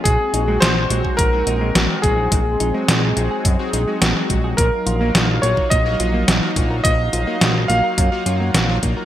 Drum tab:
HH |x-x-x-x-x-x-x-x-|x-x-x-x-x-x-x-x-|x-x-x-x-x-x-x-x-|x-x-x-x-x-x-x-x-|
SD |----o-------o---|----o-------o---|----o-------o---|----o-------o---|
BD |o------oo-----o-|o-------o-----o-|o------oo-----o-|o-------o-----o-|